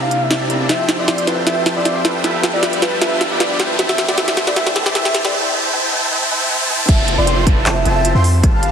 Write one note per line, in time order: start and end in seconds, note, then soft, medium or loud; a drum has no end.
0.00 0.49 C3 medium
0.00 0.66 C3 medium
0.00 0.68 A#3 medium
0.00 0.49 C4 medium
0.00 0.66 D4 medium
0.00 0.50 E4 medium
0.00 2.21 E4 medium
0.00 0.50 A#4 medium
0.00 0.51 D5 loud
0.00 0.23 F5 medium
0.00 riser medium
0.11 closed hi-hat medium
0.21 0.33 E5 medium
0.30 0.48 C2 loud
0.30 0.48 C4 loud
0.30 0.48 G4 medium
0.30 0.48 D5 medium
0.30 0.48 E5 medium
0.30 0.48 A5 loud
0.30 snare medium
0.30 closed hi-hat medium
0.49 0.58 C2 loud
0.49 0.67 C3 medium
0.49 0.67 C4 medium
0.49 0.58 C4 medium
0.49 0.67 E4 medium
0.49 0.58 G4 medium
0.49 0.67 A#4 medium
0.49 0.58 D5 medium
0.49 0.68 D5 loud
0.49 0.58 E5 medium
0.49 0.58 A#5 medium
0.49 closed hi-hat medium
0.60 0.67 C2 medium
0.60 0.67 C4 medium
0.60 0.67 G4 medium
0.60 0.67 D5 medium
0.60 0.67 E5 medium
0.60 0.67 A5 medium
0.68 0.96 F3 medium
0.68 2.23 F3 medium
0.68 0.96 C4 medium
0.68 2.23 C4 medium
0.68 0.96 F4 medium
0.68 0.96 G4 medium
0.68 2.23 A4 medium
0.68 0.97 A4 medium
0.68 0.96 C5 medium
0.68 0.87 E5 medium
0.68 0.97 E5 medium
0.68 0.96 G5 medium
0.68 0.96 A5 medium
0.68 snare medium
0.68 closed hi-hat medium
0.89 snare medium
0.89 closed hi-hat medium
0.97 1.25 F1 medium
0.97 1.44 F3 medium
0.97 1.45 C4 medium
0.97 1.25 F4 medium
0.97 1.45 G4 medium
0.97 1.46 A4 medium
0.97 1.25 C5 medium
0.97 1.27 D5 medium
0.97 1.25 E5 medium
0.97 1.25 G5 medium
0.97 1.25 C6 medium
1.01 1.46 E5 medium
1.08 snare medium
1.08 closed hi-hat medium
1.18 closed hi-hat medium
1.27 1.45 F1 loud
1.27 1.44 F4 medium
1.27 1.39 B4 medium
1.27 1.44 C5 medium
1.27 1.44 E5 medium
1.27 1.44 G5 medium
1.27 1.44 A5 medium
1.27 snare medium
1.27 closed hi-hat medium
1.46 1.74 F1 medium
1.46 1.73 F3 medium
1.46 1.74 C4 medium
1.46 1.74 F4 medium
1.46 1.74 G4 medium
1.46 1.74 A4 medium
1.46 1.74 C5 medium
1.46 1.64 E5 medium
1.46 1.74 E5 medium
1.46 1.74 E5 loud
1.46 1.74 G5 medium
1.46 1.74 A5 medium
1.46 snare medium
1.46 closed hi-hat medium
1.66 snare medium
1.66 closed hi-hat medium
1.74 2.03 F2 medium
1.74 2.22 F3 medium
1.74 2.22 C4 medium
1.74 2.03 F4 medium
1.74 2.23 G4 medium
1.74 2.23 A4 medium
1.74 2.03 C5 medium
1.74 2.04 D5 medium
1.74 2.03 E5 medium
1.74 2.24 E5 medium
1.74 2.03 G5 medium
1.74 2.03 C6 medium
1.85 snare medium
1.85 closed hi-hat medium
2.05 2.22 F2 loud
2.05 2.22 F4 medium
2.05 2.17 B4 medium
2.05 2.22 C5 medium
2.05 2.22 E5 medium
2.05 2.22 G5 medium
2.05 2.22 A5 medium
2.05 snare medium
2.05 closed hi-hat medium
2.23 2.52 G1 loud
2.23 2.50 F3 medium
2.23 3.58 G3 medium
2.23 2.51 B3 medium
2.23 5.31 D4 medium
2.23 3.58 F4 medium
2.23 2.51 F4 medium
2.23 2.51 G4 medium
2.23 2.51 A4 medium
2.23 2.51 B4 medium
2.23 3.58 B4 medium
2.23 2.42 E5 medium
2.23 2.51 E5 medium
2.23 2.52 E5 loud
2.23 2.51 G5 medium
2.23 2.51 A5 medium
2.23 snare medium
2.23 closed hi-hat medium
2.43 snare medium
2.43 closed hi-hat medium
2.51 2.80 G1 loud
2.51 2.99 F3 medium
2.51 2.99 B3 medium
2.51 2.80 F4 medium
2.51 3.00 G4 medium
2.51 3.00 A4 medium
2.51 2.80 B4 medium
2.51 2.82 D5 medium
2.51 2.80 E5 medium
2.51 3.01 E5 medium
2.51 2.80 G5 medium
2.51 2.80 B5 medium
2.63 snare medium
2.63 closed hi-hat medium
2.73 closed hi-hat medium
2.82 3.00 G1 medium
2.82 2.99 F4 medium
2.82 2.99 B4 medium
2.82 2.94 B4 medium
2.82 2.99 E5 medium
2.82 2.99 G5 medium
2.82 2.99 A5 medium
2.82 snare medium
2.82 closed hi-hat medium
3.00 3.33 G1 medium
3.00 3.28 F3 medium
3.00 3.28 B3 medium
3.00 3.29 F4 medium
3.00 3.29 G4 medium
3.00 3.29 A4 medium
3.00 3.29 B4 medium
3.00 3.29 E5 medium
3.00 3.19 E5 loud
3.00 3.29 E5 loud
3.00 3.29 G5 medium
3.00 3.29 A5 medium
3.00 snare medium
3.00 closed hi-hat medium
3.21 snare medium
3.21 closed hi-hat medium
3.29 3.58 G2 medium
3.29 3.76 F3 medium
3.29 3.77 B3 medium
3.29 3.57 F4 medium
3.29 3.77 G4 medium
3.29 3.78 A4 medium
3.29 3.57 B4 medium
3.29 3.59 D5 medium
3.29 3.57 E5 medium
3.29 3.57 G5 medium
3.29 3.57 B5 medium
3.33 3.78 E5 medium
3.40 snare medium
3.40 closed hi-hat medium
3.60 5.32 C3 medium
3.60 5.32 A3 medium
3.60 3.77 E4 medium
3.60 5.32 E4 medium
3.60 3.72 B4 medium
3.60 3.77 C5 medium
3.60 3.77 E5 medium
3.60 3.77 G5 medium
3.60 3.77 A5 medium
3.60 snare medium
3.60 closed hi-hat medium
3.78 4.06 C2 loud
3.78 4.05 E3 medium
3.78 4.06 C4 medium
3.78 4.06 E4 medium
3.78 4.06 G4 medium
3.78 4.06 A4 medium
3.78 4.06 C5 medium
3.78 3.97 E5 loud
3.78 4.06 E5 medium
3.78 4.07 E5 loud
3.78 4.06 G5 medium
3.78 snare medium
3.78 closed hi-hat medium
3.89 snare medium
3.98 snare medium
3.98 closed hi-hat medium
4.06 4.16 C2 medium
4.06 4.15 E3 medium
4.06 4.16 C4 medium
4.06 4.16 E4 medium
4.06 4.16 G4 medium
4.06 4.17 A4 medium
4.06 4.16 C5 medium
4.06 4.16 D5 medium
4.06 4.16 E5 medium
4.06 4.17 E5 medium
4.06 4.16 G5 medium
4.06 4.16 C6 medium
4.06 snare medium
4.17 4.45 C2 loud
4.17 4.44 E3 loud
4.17 4.44 C4 medium
4.17 4.45 E4 medium
4.17 4.45 G4 medium
4.17 4.45 A4 medium
4.17 4.45 C5 medium
4.17 4.45 E5 medium
4.17 4.35 E5 loud
4.17 4.45 E5 loud
4.17 4.45 G5 medium
4.17 4.45 A5 medium
4.17 snare medium
4.17 closed hi-hat medium
4.28 snare medium
4.28 closed hi-hat medium
4.37 snare medium
4.37 closed hi-hat medium
4.45 4.55 C2 loud
4.45 4.54 E3 medium
4.45 4.54 C4 medium
4.45 4.55 E4 medium
4.45 4.55 G4 medium
4.45 4.55 A4 medium
4.45 4.55 C5 medium
4.45 4.55 D5 loud
4.45 4.55 E5 medium
4.45 4.56 E5 loud
4.45 4.55 G5 medium
4.45 4.55 C6 medium
4.45 snare medium
4.55 4.84 C2 medium
4.55 4.83 E3 loud
4.55 4.83 C4 medium
4.55 4.83 E4 medium
4.55 4.83 G4 medium
4.55 4.84 A4 medium
4.55 4.83 C5 medium
4.55 4.74 E5 loud
4.55 4.83 E5 medium
4.55 4.84 E5 loud
4.55 4.83 G5 medium
4.55 4.83 A5 medium
4.55 snare medium
4.55 closed hi-hat medium
4.67 snare medium
4.76 snare medium
4.76 closed hi-hat medium
4.84 4.93 C2 medium
4.84 4.93 E3 medium
4.84 4.93 C4 medium
4.84 4.94 E4 medium
4.84 4.94 G4 medium
4.84 4.94 A4 medium
4.84 4.94 C5 medium
4.84 4.94 D5 medium
4.84 4.94 E5 medium
4.84 4.94 G5 medium
4.84 4.94 C6 medium
4.84 snare medium
4.88 4.95 E5 loud
4.94 5.23 C2 loud
4.94 5.22 E3 medium
4.94 5.22 C4 medium
4.94 5.22 E4 medium
4.94 5.22 G4 medium
4.94 5.22 A4 medium
4.94 5.22 C5 medium
4.94 5.13 E5 loud
4.94 5.22 E5 medium
4.94 5.23 E5 loud
4.94 5.22 G5 medium
4.94 5.22 A5 medium
4.94 snare loud
4.94 closed hi-hat medium
5.05 snare medium
5.14 snare loud
5.14 closed hi-hat medium
5.23 5.32 C2 medium
5.23 5.31 E3 medium
5.23 5.32 C4 medium
5.23 5.32 E4 medium
5.23 5.32 G4 medium
5.23 5.33 A4 medium
5.23 5.32 C5 medium
5.23 5.32 D5 loud
5.23 5.32 E5 medium
5.23 5.33 E5 loud
5.23 5.32 G5 medium
5.23 5.32 C6 medium
5.23 snare medium
5.34 5.52 E4 medium
5.34 5.52 C5 medium
5.34 5.52 E5 medium
5.34 5.52 G5 medium
5.34 5.52 A5 medium
5.53 5.71 E4 medium
5.53 5.71 C5 medium
5.53 5.71 E5 medium
5.53 5.71 G5 medium
5.53 5.71 A5 medium
5.72 5.90 E4 medium
5.72 5.90 C5 medium
5.72 5.90 E5 medium
5.72 5.90 G5 medium
5.72 5.90 A5 loud
5.92 6.10 E4 medium
5.92 6.10 C5 medium
5.92 6.10 E5 medium
5.92 6.10 G5 medium
5.92 6.10 A5 loud
6.11 6.29 E4 medium
6.11 6.29 C5 medium
6.11 6.29 E5 medium
6.11 6.29 G5 medium
6.11 6.29 A5 medium
6.31 6.48 E4 medium
6.31 6.48 C5 medium
6.31 6.48 E5 medium
6.31 6.48 G5 medium
6.31 6.48 A5 medium
6.50 6.68 E4 medium
6.50 6.68 C5 medium
6.50 6.68 E5 medium
6.50 6.68 G5 medium
6.50 6.68 A5 medium
6.69 6.87 E4 medium
6.69 6.87 C5 medium
6.69 6.87 E5 medium
6.69 6.87 G5 medium
6.69 6.87 A5 medium
6.89 7.16 F1 loud
6.89 8.42 F3 medium
6.89 8.42 C4 medium
6.89 8.42 E4 medium
6.89 7.16 F4 medium
6.89 8.42 A4 medium
6.89 7.06 E5 loud
6.89 7.16 G5 medium
6.89 7.16 A5 loud
6.89 kick loud
6.89 closed hi-hat medium
6.89 crash loud
6.89 downlifter medium
7.08 closed hi-hat medium
7.18 7.45 F1 loud
7.18 7.44 F4 medium
7.18 7.45 C5 medium
7.18 7.36 D5 medium
7.18 7.44 E5 medium
7.18 7.44 G5 medium
7.18 7.45 C6 medium
7.27 closed hi-hat medium
7.47 7.68 B4 medium
7.47 7.64 A5 medium
7.47 kick loud
7.47 closed hi-hat medium
7.66 7.84 F1 medium
7.66 7.78 F4 loud
7.66 7.78 C5 medium
7.66 7.78 E5 medium
7.66 7.84 E5 medium
7.66 7.78 G5 medium
7.66 7.78 A5 loud
7.66 clap loud
7.66 closed hi-hat medium
7.85 8.13 F1 loud
7.85 8.13 F4 loud
7.85 8.13 C5 medium
7.85 8.13 E5 medium
7.85 8.13 G5 medium
7.85 8.12 A5 loud
7.85 8.13 A5 loud
7.85 closed hi-hat medium
7.96 8.13 E5 loud
8.05 closed hi-hat medium
8.15 8.42 F2 medium
8.15 8.26 F4 medium
8.15 8.26 C5 medium
8.15 8.26 E5 medium
8.15 8.26 G5 medium
8.15 8.26 C6 loud
8.24 open hi-hat loud
8.43 8.71 G1 medium
8.43 8.72 G3 medium
8.43 8.71 G3 medium
8.43 8.72 D4 medium
8.43 8.72 F4 medium
8.43 8.71 G4 medium
8.43 8.72 B4 medium
8.43 8.71 B4 medium
8.43 8.71 F5 medium
8.43 8.71 A5 loud
8.43 8.71 A5 medium
8.43 kick loud
8.43 closed hi-hat medium
8.54 8.72 F5 medium
8.63 closed hi-hat medium